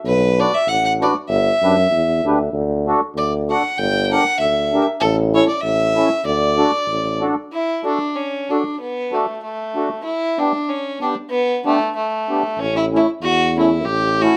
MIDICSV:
0, 0, Header, 1, 4, 480
1, 0, Start_track
1, 0, Key_signature, 2, "major"
1, 0, Tempo, 619835
1, 44, Time_signature, 2, 2, 24, 8
1, 5325, Tempo, 636267
1, 10977, End_track
2, 0, Start_track
2, 0, Title_t, "Fiddle"
2, 0, Program_c, 0, 110
2, 49, Note_on_c, 0, 71, 88
2, 311, Note_on_c, 0, 74, 81
2, 323, Note_off_c, 0, 71, 0
2, 423, Note_on_c, 0, 76, 84
2, 435, Note_off_c, 0, 74, 0
2, 527, Note_on_c, 0, 78, 86
2, 539, Note_off_c, 0, 76, 0
2, 654, Note_off_c, 0, 78, 0
2, 662, Note_on_c, 0, 78, 69
2, 717, Note_off_c, 0, 78, 0
2, 792, Note_on_c, 0, 74, 71
2, 889, Note_off_c, 0, 74, 0
2, 995, Note_on_c, 0, 76, 91
2, 1711, Note_off_c, 0, 76, 0
2, 2460, Note_on_c, 0, 74, 73
2, 2574, Note_off_c, 0, 74, 0
2, 2718, Note_on_c, 0, 78, 74
2, 2927, Note_on_c, 0, 79, 90
2, 2939, Note_off_c, 0, 78, 0
2, 3131, Note_off_c, 0, 79, 0
2, 3131, Note_on_c, 0, 79, 57
2, 3187, Note_on_c, 0, 78, 106
2, 3199, Note_off_c, 0, 79, 0
2, 3401, Note_off_c, 0, 78, 0
2, 3406, Note_on_c, 0, 76, 78
2, 3748, Note_off_c, 0, 76, 0
2, 3875, Note_on_c, 0, 69, 90
2, 3993, Note_off_c, 0, 69, 0
2, 4139, Note_on_c, 0, 73, 90
2, 4242, Note_off_c, 0, 73, 0
2, 4245, Note_on_c, 0, 74, 66
2, 4346, Note_on_c, 0, 76, 87
2, 4358, Note_off_c, 0, 74, 0
2, 4832, Note_off_c, 0, 76, 0
2, 4851, Note_on_c, 0, 74, 89
2, 5556, Note_off_c, 0, 74, 0
2, 5816, Note_on_c, 0, 64, 67
2, 6054, Note_off_c, 0, 64, 0
2, 6073, Note_on_c, 0, 62, 66
2, 6290, Note_on_c, 0, 61, 61
2, 6301, Note_off_c, 0, 62, 0
2, 6556, Note_on_c, 0, 62, 53
2, 6567, Note_off_c, 0, 61, 0
2, 6772, Note_off_c, 0, 62, 0
2, 6780, Note_on_c, 0, 59, 69
2, 7035, Note_on_c, 0, 57, 59
2, 7046, Note_off_c, 0, 59, 0
2, 7251, Note_off_c, 0, 57, 0
2, 7254, Note_on_c, 0, 57, 57
2, 7697, Note_off_c, 0, 57, 0
2, 7711, Note_on_c, 0, 64, 71
2, 7973, Note_on_c, 0, 62, 68
2, 7984, Note_off_c, 0, 64, 0
2, 8201, Note_on_c, 0, 61, 71
2, 8212, Note_off_c, 0, 62, 0
2, 8446, Note_off_c, 0, 61, 0
2, 8450, Note_on_c, 0, 62, 60
2, 8549, Note_off_c, 0, 62, 0
2, 8661, Note_on_c, 0, 59, 84
2, 8906, Note_off_c, 0, 59, 0
2, 8939, Note_on_c, 0, 57, 79
2, 9140, Note_off_c, 0, 57, 0
2, 9158, Note_on_c, 0, 57, 71
2, 9638, Note_on_c, 0, 61, 92
2, 9649, Note_off_c, 0, 57, 0
2, 9766, Note_off_c, 0, 61, 0
2, 9770, Note_on_c, 0, 64, 67
2, 9827, Note_off_c, 0, 64, 0
2, 9917, Note_on_c, 0, 64, 70
2, 10012, Note_off_c, 0, 64, 0
2, 10116, Note_on_c, 0, 66, 86
2, 10359, Note_off_c, 0, 66, 0
2, 10390, Note_on_c, 0, 64, 70
2, 10588, Note_on_c, 0, 67, 86
2, 10600, Note_off_c, 0, 64, 0
2, 10861, Note_on_c, 0, 66, 88
2, 10872, Note_off_c, 0, 67, 0
2, 10977, Note_off_c, 0, 66, 0
2, 10977, End_track
3, 0, Start_track
3, 0, Title_t, "Accordion"
3, 0, Program_c, 1, 21
3, 300, Note_on_c, 1, 62, 55
3, 306, Note_on_c, 1, 66, 50
3, 312, Note_on_c, 1, 71, 62
3, 400, Note_off_c, 1, 62, 0
3, 403, Note_off_c, 1, 66, 0
3, 406, Note_off_c, 1, 71, 0
3, 781, Note_on_c, 1, 62, 57
3, 781, Note_on_c, 1, 66, 49
3, 788, Note_on_c, 1, 71, 64
3, 880, Note_off_c, 1, 62, 0
3, 880, Note_off_c, 1, 66, 0
3, 884, Note_off_c, 1, 71, 0
3, 1266, Note_on_c, 1, 67, 57
3, 1268, Note_on_c, 1, 62, 57
3, 1268, Note_on_c, 1, 71, 60
3, 1363, Note_off_c, 1, 67, 0
3, 1364, Note_off_c, 1, 71, 0
3, 1365, Note_off_c, 1, 62, 0
3, 1747, Note_on_c, 1, 62, 67
3, 1753, Note_on_c, 1, 67, 62
3, 1759, Note_on_c, 1, 71, 67
3, 1846, Note_off_c, 1, 62, 0
3, 1849, Note_off_c, 1, 67, 0
3, 1852, Note_off_c, 1, 71, 0
3, 2222, Note_on_c, 1, 62, 69
3, 2228, Note_on_c, 1, 66, 55
3, 2231, Note_on_c, 1, 69, 76
3, 2324, Note_off_c, 1, 62, 0
3, 2327, Note_off_c, 1, 66, 0
3, 2329, Note_off_c, 1, 69, 0
3, 2707, Note_on_c, 1, 62, 56
3, 2710, Note_on_c, 1, 66, 47
3, 2712, Note_on_c, 1, 69, 62
3, 2807, Note_off_c, 1, 62, 0
3, 2808, Note_off_c, 1, 66, 0
3, 2809, Note_off_c, 1, 69, 0
3, 3177, Note_on_c, 1, 62, 64
3, 3185, Note_on_c, 1, 67, 52
3, 3186, Note_on_c, 1, 70, 69
3, 3281, Note_off_c, 1, 62, 0
3, 3285, Note_off_c, 1, 67, 0
3, 3286, Note_off_c, 1, 70, 0
3, 3665, Note_on_c, 1, 62, 61
3, 3669, Note_on_c, 1, 67, 52
3, 3675, Note_on_c, 1, 70, 61
3, 3763, Note_off_c, 1, 62, 0
3, 3765, Note_off_c, 1, 67, 0
3, 3768, Note_off_c, 1, 70, 0
3, 4136, Note_on_c, 1, 61, 54
3, 4137, Note_on_c, 1, 64, 55
3, 4146, Note_on_c, 1, 69, 71
3, 4237, Note_off_c, 1, 61, 0
3, 4238, Note_off_c, 1, 64, 0
3, 4242, Note_off_c, 1, 69, 0
3, 4610, Note_on_c, 1, 61, 54
3, 4617, Note_on_c, 1, 64, 60
3, 4619, Note_on_c, 1, 69, 69
3, 4714, Note_off_c, 1, 61, 0
3, 4717, Note_off_c, 1, 64, 0
3, 4718, Note_off_c, 1, 69, 0
3, 5093, Note_on_c, 1, 62, 63
3, 5094, Note_on_c, 1, 66, 57
3, 5099, Note_on_c, 1, 69, 67
3, 5196, Note_off_c, 1, 62, 0
3, 5197, Note_off_c, 1, 66, 0
3, 5199, Note_off_c, 1, 69, 0
3, 5576, Note_on_c, 1, 62, 60
3, 5579, Note_on_c, 1, 66, 58
3, 5586, Note_on_c, 1, 69, 79
3, 5678, Note_off_c, 1, 62, 0
3, 5680, Note_off_c, 1, 66, 0
3, 5683, Note_off_c, 1, 69, 0
3, 6047, Note_on_c, 1, 62, 45
3, 6054, Note_on_c, 1, 66, 46
3, 6058, Note_on_c, 1, 69, 57
3, 6157, Note_off_c, 1, 62, 0
3, 6160, Note_off_c, 1, 66, 0
3, 6162, Note_off_c, 1, 69, 0
3, 6548, Note_on_c, 1, 62, 55
3, 6557, Note_on_c, 1, 66, 48
3, 6559, Note_on_c, 1, 69, 51
3, 6647, Note_off_c, 1, 62, 0
3, 6652, Note_off_c, 1, 66, 0
3, 6653, Note_off_c, 1, 69, 0
3, 7015, Note_on_c, 1, 62, 46
3, 7019, Note_on_c, 1, 66, 52
3, 7023, Note_on_c, 1, 69, 53
3, 7119, Note_off_c, 1, 62, 0
3, 7121, Note_off_c, 1, 66, 0
3, 7124, Note_off_c, 1, 69, 0
3, 7495, Note_on_c, 1, 62, 48
3, 7502, Note_on_c, 1, 66, 43
3, 7507, Note_on_c, 1, 69, 55
3, 7598, Note_off_c, 1, 62, 0
3, 7602, Note_off_c, 1, 66, 0
3, 7604, Note_off_c, 1, 69, 0
3, 7971, Note_on_c, 1, 59, 60
3, 7977, Note_on_c, 1, 62, 51
3, 7977, Note_on_c, 1, 67, 57
3, 8073, Note_off_c, 1, 59, 0
3, 8076, Note_off_c, 1, 62, 0
3, 8076, Note_off_c, 1, 67, 0
3, 8442, Note_on_c, 1, 59, 42
3, 8442, Note_on_c, 1, 62, 43
3, 8450, Note_on_c, 1, 67, 58
3, 8546, Note_off_c, 1, 59, 0
3, 8546, Note_off_c, 1, 62, 0
3, 8550, Note_off_c, 1, 67, 0
3, 8927, Note_on_c, 1, 59, 59
3, 8927, Note_on_c, 1, 62, 56
3, 8931, Note_on_c, 1, 67, 67
3, 9028, Note_off_c, 1, 59, 0
3, 9028, Note_off_c, 1, 62, 0
3, 9030, Note_off_c, 1, 67, 0
3, 9407, Note_on_c, 1, 59, 47
3, 9414, Note_on_c, 1, 62, 46
3, 9417, Note_on_c, 1, 67, 57
3, 9509, Note_off_c, 1, 59, 0
3, 9512, Note_off_c, 1, 62, 0
3, 9514, Note_off_c, 1, 67, 0
3, 9885, Note_on_c, 1, 57, 48
3, 9895, Note_on_c, 1, 61, 50
3, 9898, Note_on_c, 1, 64, 63
3, 9990, Note_off_c, 1, 57, 0
3, 9995, Note_off_c, 1, 61, 0
3, 9996, Note_off_c, 1, 64, 0
3, 10370, Note_on_c, 1, 57, 47
3, 10374, Note_on_c, 1, 61, 44
3, 10381, Note_on_c, 1, 64, 62
3, 10474, Note_off_c, 1, 57, 0
3, 10476, Note_off_c, 1, 61, 0
3, 10480, Note_off_c, 1, 64, 0
3, 10857, Note_on_c, 1, 57, 62
3, 10861, Note_on_c, 1, 61, 52
3, 10866, Note_on_c, 1, 64, 63
3, 10958, Note_off_c, 1, 57, 0
3, 10960, Note_off_c, 1, 61, 0
3, 10963, Note_off_c, 1, 64, 0
3, 10977, End_track
4, 0, Start_track
4, 0, Title_t, "Tuba"
4, 0, Program_c, 2, 58
4, 34, Note_on_c, 2, 35, 89
4, 347, Note_off_c, 2, 35, 0
4, 515, Note_on_c, 2, 33, 56
4, 829, Note_off_c, 2, 33, 0
4, 992, Note_on_c, 2, 31, 89
4, 1164, Note_off_c, 2, 31, 0
4, 1247, Note_on_c, 2, 42, 72
4, 1453, Note_off_c, 2, 42, 0
4, 1472, Note_on_c, 2, 40, 59
4, 1712, Note_off_c, 2, 40, 0
4, 1732, Note_on_c, 2, 38, 71
4, 1938, Note_off_c, 2, 38, 0
4, 1958, Note_on_c, 2, 38, 85
4, 2274, Note_off_c, 2, 38, 0
4, 2439, Note_on_c, 2, 38, 75
4, 2754, Note_off_c, 2, 38, 0
4, 2923, Note_on_c, 2, 31, 80
4, 3236, Note_off_c, 2, 31, 0
4, 3401, Note_on_c, 2, 38, 60
4, 3713, Note_off_c, 2, 38, 0
4, 3882, Note_on_c, 2, 33, 93
4, 4192, Note_off_c, 2, 33, 0
4, 4356, Note_on_c, 2, 33, 69
4, 4669, Note_off_c, 2, 33, 0
4, 4836, Note_on_c, 2, 38, 90
4, 5151, Note_off_c, 2, 38, 0
4, 5315, Note_on_c, 2, 33, 56
4, 5630, Note_off_c, 2, 33, 0
4, 9623, Note_on_c, 2, 33, 64
4, 9941, Note_off_c, 2, 33, 0
4, 10104, Note_on_c, 2, 40, 63
4, 10595, Note_on_c, 2, 33, 71
4, 10606, Note_off_c, 2, 40, 0
4, 10909, Note_off_c, 2, 33, 0
4, 10977, End_track
0, 0, End_of_file